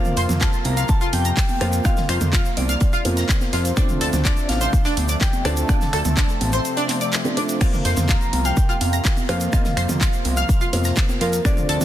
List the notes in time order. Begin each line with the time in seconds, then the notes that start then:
Already playing: C3 F3 A#3 C4 F4 A#4 C5 F5
0.05 closed hi-hat, mid tom, shaker
0.17 F2 C5 C6, closed hi-hat, open hi-hat
0.29 F2, snare, closed hi-hat, mid tom, high conga, shaker
0.41 F4 F5 A5, kick, snare, clap, closed hi-hat, shaker
0.53 closed hi-hat, shaker
0.64 C2 A#5, closed hi-hat, open hi-hat, high conga
0.77 F5 F6, closed hi-hat, shaker
0.88 A5, kick, closed hi-hat, shaker
1.01 F4 F5, closed hi-hat, shaker
1.13 F2 G5, closed hi-hat, open hi-hat, high conga
1.25 A#5 A#6, closed hi-hat, shaker
1.37 kick, snare, clap, closed hi-hat, open hi-hat, shaker
1.48 closed hi-hat, high conga, shaker
1.61 F2 A#3 C4 F4 A#4 C5 F5, finger snap, closed hi-hat, open hi-hat
1.73 closed hi-hat, shaker
1.85 A#3 C4 F4 D#5 F5, finger snap, kick, closed hi-hat, high conga, shaker
1.97 snare, closed hi-hat, mid tom, shaker
2.09 F2 C5 F5 C6, finger snap, closed hi-hat, open hi-hat
2.21 F2, closed hi-hat, mid tom, high conga, shaker
2.33 F4 F5, kick, snare, clap, closed hi-hat, shaker
2.45 closed hi-hat, shaker
2.57 C2 D5, closed hi-hat, open hi-hat, high conga
2.69 F5 F6, closed hi-hat, shaker
2.80 kick, closed hi-hat, shaker
2.93 F4 F5, closed hi-hat, shaker
3.05 F2 A#3 C4 F4 A#4 C5, closed hi-hat, open hi-hat, high conga
3.17 A#5 A#6, snare, closed hi-hat, shaker
3.29 kick, snare, clap, closed hi-hat, shaker
3.41 snare, closed hi-hat, high conga, shaker
3.53 F2 F4 C5 F5, snare, closed hi-hat, open hi-hat
3.65 closed hi-hat, shaker
3.77 C3 F3 A3 C4 D4 F4 A4 C5 D5, finger snap, kick, closed hi-hat, high conga, shaker
3.89 closed hi-hat, mid tom, shaker
4.01 D2 A4 A5, closed hi-hat, open hi-hat
4.13 D2, snare, closed hi-hat, mid tom, high conga, shaker
4.25 D4 D5, kick, snare, clap, closed hi-hat, shaker
4.37 closed hi-hat, shaker
4.49 A1 F5, snare, closed hi-hat, open hi-hat, high conga
4.61 C5 C6, closed hi-hat, shaker
4.73 kick, closed hi-hat, shaker
4.85 D4 D5, snare, closed hi-hat, shaker
4.97 D2, open hi-hat, high conga
5.08 D5 D6, closed hi-hat, shaker
5.21 G5, kick, snare, clap, closed hi-hat, shaker
5.33 closed hi-hat, high conga, shaker
5.45 D2 C4 D4 F4 A4 C5 D5 A5, finger snap, closed hi-hat, open hi-hat
5.57 closed hi-hat, shaker
5.69 C4 D4 F4 A4 D5 F5, finger snap, kick, closed hi-hat, high conga, shaker
5.81 snare, closed hi-hat, mid tom, shaker
5.93 D2 A4 A5, finger snap, closed hi-hat, open hi-hat
6.05 D2, closed hi-hat, mid tom, high conga, shaker
6.17 D4 D5, kick, snare, clap, closed hi-hat, shaker
6.29 closed hi-hat, shaker
6.41 A1, closed hi-hat, open hi-hat, high conga
6.53 C5 C6, closed hi-hat, shaker
6.65 closed hi-hat, shaker
6.77 D4 D5, closed hi-hat, shaker
6.89 clap, closed hi-hat, open hi-hat, high conga
7.01 D5 D6, closed hi-hat, shaker
7.13 snare, clap, closed hi-hat, shaker
7.25 C4 D4 F4 A4 D5, closed hi-hat, high conga, shaker
7.37 C4 D4 F4 A4 C5 D5, closed hi-hat, open hi-hat
7.49 closed hi-hat, shaker
7.61 A#3 F4 F5, finger snap, kick, closed hi-hat, crash, high conga, shaker
7.73 closed hi-hat, mid tom, shaker
7.85 F2 C5 C6, closed hi-hat, open hi-hat
7.97 F2, snare, closed hi-hat, mid tom, high conga, shaker
8.08 F4 F5 A#5, kick, snare, clap, closed hi-hat, shaker
8.21 closed hi-hat, shaker
8.33 C2, closed hi-hat, open hi-hat, high conga
8.45 F5 G5 F6, closed hi-hat, shaker
8.57 kick, closed hi-hat, shaker
8.69 F4 F5, closed hi-hat, shaker
8.81 F2 F5, closed hi-hat, open hi-hat, high conga
8.93 A#5 A#6, closed hi-hat, shaker
9.04 kick, snare, clap, closed hi-hat, open hi-hat, shaker
9.17 closed hi-hat, high conga, shaker
9.29 F2 A#3 C4 F4 A#4 C5 F5, finger snap, closed hi-hat, open hi-hat
9.40 closed hi-hat, shaker
9.53 A#3 C4 F4 A#4 D#5 F5, finger snap, kick, closed hi-hat, high conga, shaker
9.64 snare, closed hi-hat, mid tom, shaker
9.77 F2 C5 C6, finger snap, closed hi-hat, open hi-hat
9.89 F2, closed hi-hat, mid tom, high conga, shaker
10.01 F4 F5, kick, snare, clap, closed hi-hat, shaker
10.13 closed hi-hat, shaker
10.25 C2, closed hi-hat, open hi-hat, high conga
10.37 F5 F6, closed hi-hat, shaker
10.49 kick, closed hi-hat, shaker
10.61 F4 F5, closed hi-hat, shaker
10.73 F2 A#3 C4 F4 A#4 C5, closed hi-hat, open hi-hat, high conga
10.84 A#5 A#6, snare, closed hi-hat, shaker
10.96 kick, snare, clap, closed hi-hat, shaker
11.09 snare, closed hi-hat, high conga, shaker
11.20 F2 F4 A#4 F5, snare, closed hi-hat, open hi-hat
11.33 closed hi-hat, shaker
11.45 C3 A3 C4 D4 F4 A4 C5 D5, finger snap, kick, closed hi-hat, high conga, shaker
11.57 closed hi-hat, mid tom, shaker
11.69 D2 A4 A5, closed hi-hat, open hi-hat
11.81 D2, snare, closed hi-hat, mid tom, high conga, shaker